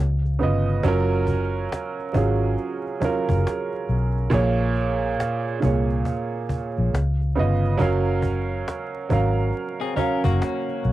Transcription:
Already playing: C#2
0.25 cajon slap
0.39 G1 C#3 B3 F4, cajon slap
0.43 D#5
0.69 cajon slap
0.83 F#1 F#3 C#4 F4, cajon bass
0.88 A#4
1.12 cajon slap
1.27 cajon bass
1.56 cajon slap
1.72 cajon slap
1.99 cajon slap
2.13 G#1 F#3 C#4 F4, cajon bass
2.17 G#4
2.43 cajon slap
2.58 cajon slap
2.86 cajon slap
3.00 F#3 C#4 F4, cajon bass
3.04 A#4
3.29 F#1, cajon bass
3.47 cajon slap
3.74 cajon slap
3.89 B1, cajon slap
4.17 cajon slap
4.30 A#1 A#2 A#3 G#4, cajon bass
4.34 C#5
4.60 cajon slap
4.75 cajon slap
5.04 cajon slap
5.20 cajon slap
5.47 cajon slap
5.60 C2 A#2 A#3 G#4, cajon bass
5.65 C#5
5.90 cajon slap
6.05 cajon bass
6.34 cajon slap
6.49 cajon bass
6.77 A#1, cajon slap
6.94 C#2, cajon slap
7.21 cajon slap
7.35 G1 C#3 B3 F4, cajon slap
7.39 D#5
7.65 cajon slap
7.78 F#1 F#3 C#4 A#4, cajon bass
7.82 F5
8.08 cajon slap
8.22 cajon bass
8.52 cajon slap
8.68 cajon slap
8.95 cajon slap
9.09 G#1 F#3 C#4 A#4 F5, cajon bass
9.38 cajon slap
9.53 cajon slap
9.81 C4 G#4, cajon slap
9.96 F#3 C#4 A#4 F5, cajon bass
10.24 F#1 A#3 F#4, cajon bass
10.42 cajon slap
10.69 cajon slap
10.84 B1, cajon slap

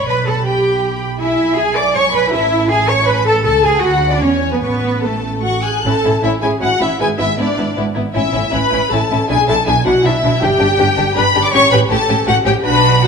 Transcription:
Already playing: B5
0.07 B1 B4 B5
0.26 A4 A5
0.45 G4 G5
1.20 E4 E5 G#5
1.58 G#4 G#5
1.76 D5 D6
1.95 C#5 C#6
2.13 B4 B5
2.32 A1 E4 E5 A5
2.70 G#4 G#5
2.89 C#5 C#6
3.08 B4 B5
3.26 A4 A5
3.45 C#2 A4 A5
3.64 G#4 G#5
3.83 D2 F#4 F#5 B5
4.11 D4 D5
4.21 E2 C#4 C#5 G#5
4.52 B3 B4
4.63 A1 B3 B4 C#6
5.03 A3 A4 A5
5.42 F#4 F#5 C#6
5.64 G#4 G#5 F#6
5.84 A1 A2 C#4 E4 A4 A5
6.04 A1 A2 C#4 E4
6.23 A1 A2 C#4 E4 E5
6.42 A1 A2 C#4 E4 G#4 G#5
6.61 A1 A2 C#4 E4 F#4 F#5
6.80 A1 A2 C#4 E4 E5
6.99 G#1 G#2 B3 E4 G#4 G#5
7.18 G#1 G#2 B3 E4 E5
7.37 G#1 G#2 B3 D4 E4 D5
7.57 G#1 G#2 B3 E4
7.77 G#1 G#2 B3 E4
7.96 G#1 G#2 B3 E4
8.15 A1 A2 C#4 E4 E5
8.33 A1 A2 C#4 E4
8.52 A1 A2 C#4 E4 B4 B5
8.72 A1 A2 C#4 E4
8.91 A1 A2 C#4 E4 A4 A5
9.11 A1 A2 C#4 E4
9.28 B1 B2 D4 E4 G#4 G#5
9.48 B1 B2 D4 E4 A4 A5
9.66 B1 B2 D4 E4 G#4 G#5
9.85 B1 B2 D4 E4 F#4 F#5
10.04 B1 B2 D4 E4 E5
10.22 B1 B2 D4 E4
10.41 G1 G2 D4 G4 G5
10.60 G1 G2 D4 G4
10.78 G1 G2 D4 G4
10.97 G1 G2 D4 G4
11.16 G1 G2 D4 G4 B4 B5
11.35 G1 G2 D4 G4
11.44 D5 D6
11.53 A1 A2 C#4 G4 C#5 C#6
11.71 A1 A2 C#4 G4 B4 B5
11.90 A1 A2 C#4 G4 A4 A5
12.09 A1 A2 C#4 G4
12.27 A1 A2 C#4 F#4 G4 F#5
12.45 A1 A2 C#4 G4 G5
12.64 B1 B2 D4 F#4 B4 B5
13.02 D4 F#4 F#5

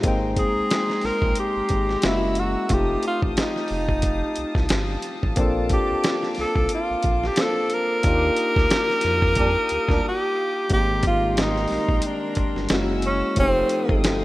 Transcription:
0.02 G#1 G#3 A#3 C4 G5 A#5 C6, kick, closed hi-hat
0.07 D#4 G5
0.36 G#4, kick, closed hi-hat
0.56 A#1
0.71 snare, closed hi-hat
0.90 snare
1.01 A#1, snare, open hi-hat
1.06 A#4
1.22 A#1, kick
1.35 closed hi-hat
1.40 G4
1.56 G#1
1.69 G#1, kick, closed hi-hat
1.89 snare
2.02 F#1 G#3 A#3 C#4 E4 F#5 E6, snare, closed hi-hat
2.07 F#4
2.35 closed hi-hat
2.39 F#4
2.69 F1 A3 C4 D#4 G4 F5 A5 D#6, kick, closed hi-hat
2.73 F4 G4
3.03 closed hi-hat
3.07 F4
3.22 A1, kick
3.37 D#4, snare, closed hi-hat
3.56 snare
3.68 F1, open hi-hat
3.89 kick
4.02 kick, closed hi-hat
4.36 C2, closed hi-hat
4.55 C2, kick, snare
4.69 G1, snare, closed hi-hat
5.02 closed hi-hat
5.23 A1, kick
5.36 A#1 A#3 C4 D4 D6, kick, closed hi-hat
5.40 F4 A4
5.69 G4, kick, closed hi-hat
5.91 C2
6.04 snare, closed hi-hat
6.23 snare
6.35 snare, open hi-hat
6.39 C2 A4
6.56 C2, kick
6.69 closed hi-hat
6.75 F4
6.90 A#1
7.03 A#1, kick, closed hi-hat
7.23 G4, snare
7.36 A#3 C4 D4 F4, snare, closed hi-hat
7.40 A4 C5
7.70 closed hi-hat
7.74 A#4
8.03 D#2 A#3 D4 D#4 G4 D6 D#6, kick, closed hi-hat
8.07 F4 G4
8.37 closed hi-hat
8.56 D2, kick, snare
8.70 snare, closed hi-hat
8.90 snare
9.01 F2, snare, closed hi-hat
9.22 kick
9.35 G3 A#3 D4, kick, closed hi-hat
9.69 D2, closed hi-hat
9.89 D2 G3 A#3 D4, kick, snare
10.08 G4
10.69 G#1 D#3 G3 G#3 A#3 C4 A#4 G5 A#5 C6, kick, closed hi-hat
10.73 G4
11.03 kick, closed hi-hat
11.07 F4
11.37 D#4, snare, closed hi-hat
11.56 snare
11.68 A#1, snare, open hi-hat
11.89 A#1, kick
12.02 closed hi-hat
12.06 D4
12.35 G1, kick, closed hi-hat
12.56 G1, snare
12.69 F#1 G#3 A#3 C#4 E4 F#5 G#5 E6, snare, closed hi-hat
12.73 F#4
13.02 C#4, closed hi-hat
13.35 F1 F3 A3 C4 D#4 A4 F5 G5 D#6, kick, closed hi-hat
13.39 C4 D#4 G4
13.69 closed hi-hat
13.89 G1, kick
14.04 snare, closed hi-hat

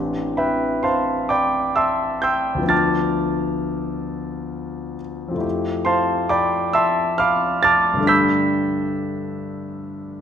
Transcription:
Already playing: A1 E3 C4 D4 G4
0.37 B4 E5 G5 B5
0.83 C5 F5 A5 C6
1.29 D5 G5 B5 D6
1.76 E5 A5 C6 E6
2.22 G5 C6 E6 G6
2.55 D2 F3
2.61 B3 D4
2.68 F4 A5 D6 F6 A6
5.29 F2 F3
5.34 A3 E4
5.41 G4
5.85 C5 F5 A5 C6
6.29 D5 G5 B5 D6
6.73 E5 A5 C6 E6
7.18 F5 B5 D6 F6
7.63 A5 D6 F6 A6
7.94 G2 D3
8.00 A3 D4
8.06 G4 B5 E6 G6 B6

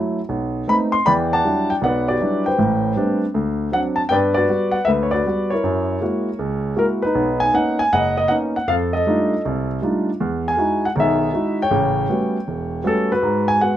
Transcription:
Already playing: F#3 A3 E4
0.29 B1
0.68 A3 B3 C4 D#4 B5
0.92 C6
1.06 E2 E3 D5 G5 B5
1.33 D5 F#5 A5
1.45 F#3 G3 D4 E4
1.70 G5
1.82 B1 B2 B4 D5 F#5
2.08 F#4 G4 D5
2.20 F#3 G3 D4 E4
2.46 B4 C5 G5
2.58 A1 A2
2.96 G3 A3 B3 C4 D4
3.34 D2
3.72 F#3 C4 D4 F#5
3.96 A5
4.09 G2 B3 B4 D5 G5
4.34 F#4 B4 D5
4.49 G3 B3 F#4
4.71 F#5
4.85 D2 B4 E5
5.03 C#5
5.11 F#4 B4 D5
5.26 G3 B3 F#4
5.50 E4 A#4 C#5
5.64 F#2
6.01 G#3 A#3 E4 F#4
6.39 C#2
6.76 G#3 A#3 E4 F#4 A#4
7.02 D#4 B4
7.15 B1
7.40 G#5
7.53 A#3 B3 C#4 D#4 F#5
7.79 G#5
7.92 F#1 D#5 F#5
8.17 D#5
8.28 A#3 B3 C#4 D#4 F#5
8.56 F#5
8.68 F2 A4 F5
8.93 A4 D#5
9.06 G3 A3 D4 D#4 F4
9.45 C2
9.82 G3 A3 D4 D#4 F4
10.20 E2
10.48 G#5
10.57 G#3 D#4 E4 F#4
10.85 F#5
10.96 B1 D#3 G#4
11.00 E5
11.34 G#3 D#4 E4 F#4
11.62 C#5 G5
11.71 A1 C#3
12.09 G3 A3 B3 C#4 F#4
12.48 E1
12.84 G3 A3 B3 C#4 F#4 A4
13.12 F#4 B4
13.23 G#2
13.48 G#5
13.61 G#3 B3 F#4 F#5

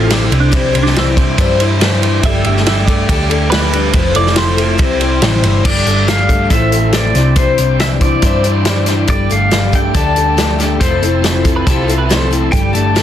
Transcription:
Already playing: A1 A2 C4 E4 A4 E5 F5 C6
0.00 F4
0.10 A3 C4 E4 G4 A4, snare, ride
0.26 E4
0.30 C2 C3 G3 D4 E4 C5 G5 D6, ride
0.40 D4
0.52 C3 E3 G3 D4 E4 C5, kick, ride
0.73 C2 G3 D4 E4 C5, ride
0.83 D4, snare
0.94 E3 G3 D4 E4 C5, snare, ride
0.98 E4
1.16 G3 D4 E4 C5, kick, ride
1.38 G2 C3 E3 G3 D4 E4 C5, kick, ride
1.60 G3 D4 E4 C5, ride
1.80 G3 D4 E4 C5, snare, ride
2.02 E3 G3 D4 E4 C5, ride
2.22 G1 G3 D4 G4 A4 D5 E5 G5 D6, kick, ride
2.26 A4
2.44 G1 A3 D4 G4 A4 E5, ride
2.57 snare
2.66 G3 D4 G4 A4 E5, snare, ride
2.87 A3 D4 G4 A4 D5, kick, ride
3.09 D2 G3 D4 G4 A4, kick, ride
3.30 D4 G4 A4, ride
3.50 G3 A3 D4 G4 B4, snare, ride
3.54 A4
3.72 G3 D4 G4 A4, ride
3.93 F1 F3 A3 C4 E4 A4 C5 F5 A5 E6, kick, ride
4.14 F1 A3 E4 A4 D5, ride
4.18 C4
4.27 snare
4.36 F3 A3 C4 E4 A4 C5, snare, ride
4.56 A3 C4 E4 A4, ride
4.78 C2 C3 E3 G3 C4 E4 C5 E5 G5, kick, ride
5.00 G3 C4 E4 C5, ride
5.22 A1 G3 C4 E4 C5, snare, ride
5.43 G1 E3 G3 C4 E4 C5, ride
5.65 G1 G3 D4 G4 A4 D5 G5 D6, kick, crash
5.86 G1 A3 D4 G4 A4, closed hi-hat
6.08 G3 D4 G4 A4 F5, snare, closed hi-hat
6.29 A3 D4 G4 A4, kick, closed hi-hat
6.50 A1 A2 F3 A3 C4 E4 F4 A4 E5 C6, kick, closed hi-hat
6.72 A3 C4 E4 A4, closed hi-hat
6.92 A3 C4 E4 A4 D5, snare, closed hi-hat
7.15 C2 C3 G3 D4 E4 C5 E5 G5 D6, snare, closed hi-hat
7.36 C3 E3 G3 D4 E4 C5, kick, closed hi-hat
7.58 C2 G3 D4 E4 C5, closed hi-hat
7.79 E3 G3 D4 E4 C5 E5, snare, closed hi-hat
8.01 G3 D4 E4 C5 D5, kick, closed hi-hat
8.22 G2 C3 E3 G3 D4 E4 C5, kick, closed hi-hat
8.44 G3 D4 E4 C5, closed hi-hat
8.65 G3 D4 E4 C5, snare, closed hi-hat
8.86 E3 G3 D4 E4 C5, snare, closed hi-hat
9.07 G1 G3 D4 G4 A4 D5, kick, closed hi-hat
9.29 G1 A3 D4 G4 A4 F5, closed hi-hat
9.51 G3 D4 G4 A4, snare, closed hi-hat
9.72 A3 D4 G4 A4 G5, kick, closed hi-hat
9.94 D2 G3 D4 G4 A4 A5, kick, closed hi-hat
10.16 D4 G4 A4, closed hi-hat
10.36 G3 A3 D4 G4 A4, snare, closed hi-hat
10.59 G3 D4 G4 A4, snare, closed hi-hat
10.80 F1 F3 A3 C4 E4 A4 C5 E5 A5 C6, kick, closed hi-hat
11.02 F1 C4 E4 A4, closed hi-hat
11.22 F3 A3 C4 E4 A4, snare, closed hi-hat
11.44 C4 E4 A4, kick, closed hi-hat
11.56 B4
11.67 C2 F3 A3 C4 E4 G4 A4, kick, closed hi-hat
11.84 F4
11.88 C4 E4 A4, closed hi-hat
11.98 B4
12.09 A3 C4 E4 A4 C5, snare, closed hi-hat
12.30 F3 C4 E4 A4, closed hi-hat
12.52 G1 G3 D4 G4 A4 D5 G5 D6, kick, closed hi-hat
12.73 G1 A3 D4 G4 A4 A5, closed hi-hat
12.95 G3 D4 G4 A4, snare, closed hi-hat

